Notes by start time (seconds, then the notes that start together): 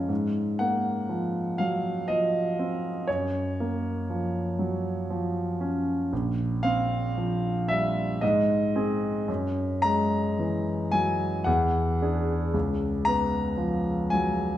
Already playing: F3 G#3 C#4 F5 A#5 C#6 G#6
0.09 G#2
0.59 A#3 F#5
1.09 F3
1.58 F#3 F5
2.08 F3 D#5
2.59 C4
3.07 F#2 C#5
3.60 A#3
4.10 F3
4.59 F#3
5.10 F3
5.61 C#4
6.13 A#1
6.63 C4 F5
7.18 F3
7.68 G3 E5
8.21 G#2 D#5
8.75 C4 G#4
9.28 F#2
9.82 G#3 A#5
10.39 E3
10.91 F#3 G#5
11.44 E2 F#5
12.02 D4 G#4
12.54 C#2
13.05 B3 A#5
13.57 F3
14.10 F#3 G#5